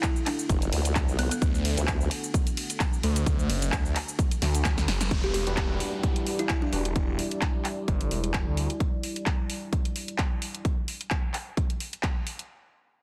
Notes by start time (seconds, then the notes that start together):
Already playing: D4 A4 F#5
0.03 E4, kick, clap, closed hi-hat, shaker
0.16 shaker
0.26 D4, clap, open hi-hat, ride
0.39 shaker
0.49 F#1, kick, closed hi-hat, shaker
0.62 closed hi-hat, shaker
0.73 D2, open hi-hat, ride
0.85 closed hi-hat, shaker
0.95 kick, clap, closed hi-hat, shaker
1.08 C2, shaker
1.19 B3, open hi-hat, ride
1.31 B3, closed hi-hat, shaker
1.42 D2, kick, closed hi-hat, shaker
1.55 shaker
1.65 D2, open hi-hat, ride
1.77 D2, closed hi-hat, shaker
1.87 kick, clap, closed hi-hat, shaker
2.01 shaker
2.11 open hi-hat, ride
2.24 shaker
2.34 kick, closed hi-hat, shaker
2.47 closed hi-hat, shaker
2.57 open hi-hat, ride
2.70 closed hi-hat, shaker
2.80 kick, clap, closed hi-hat, shaker
2.93 shaker
3.03 D2, open hi-hat, ride
3.16 closed hi-hat, shaker
3.26 kick, closed hi-hat, shaker
3.39 shaker
3.50 F#1, open hi-hat, ride
3.62 closed hi-hat, shaker
3.72 kick, clap, closed hi-hat, shaker
3.86 shaker
3.95 clap, open hi-hat, ride
4.09 shaker
4.19 kick, closed hi-hat, shaker
4.31 closed hi-hat, shaker
4.42 D2, snare, open hi-hat, ride
4.55 closed hi-hat, shaker
4.65 kick, snare, clap, closed hi-hat, shaker
4.78 snare, shaker
4.88 F#1, snare, open hi-hat, ride
5.01 snare, closed hi-hat, shaker
5.11 G3 E4 D5, kick, closed hi-hat, downlifter
5.24 G4
5.34 E1 G4, open hi-hat
5.47 E1 D4 F#4 G4 B4, closed hi-hat
5.57 kick, clap, closed hi-hat
5.80 open hi-hat
6.03 kick, closed hi-hat
6.16 closed hi-hat
6.27 open hi-hat
6.39 E4, closed hi-hat
6.49 E4, kick, clap, closed hi-hat
6.62 D4
6.73 E1 D4 F#4 G4 B4, open hi-hat
6.85 closed hi-hat
6.96 kick, closed hi-hat
7.19 open hi-hat
7.31 closed hi-hat
7.41 kick, clap, closed hi-hat
7.65 clap, open hi-hat
7.88 G1, kick, closed hi-hat
8.01 closed hi-hat
8.11 E1, open hi-hat
8.24 closed hi-hat
8.34 kick, clap, closed hi-hat
8.47 D2
8.57 open hi-hat
8.70 closed hi-hat
8.80 kick, closed hi-hat
9.03 open hi-hat
9.16 closed hi-hat
9.26 kick, clap, closed hi-hat
9.50 open hi-hat
9.73 kick, closed hi-hat
9.85 closed hi-hat
9.96 open hi-hat
10.08 closed hi-hat
10.18 kick, clap, closed hi-hat
10.42 open hi-hat
10.55 closed hi-hat
10.65 kick, closed hi-hat
10.88 open hi-hat
11.01 closed hi-hat
11.11 kick, clap, closed hi-hat
11.34 clap, open hi-hat
11.57 kick, closed hi-hat
11.70 closed hi-hat
11.80 open hi-hat
11.93 closed hi-hat
12.03 kick, clap, closed hi-hat
12.27 open hi-hat
12.39 closed hi-hat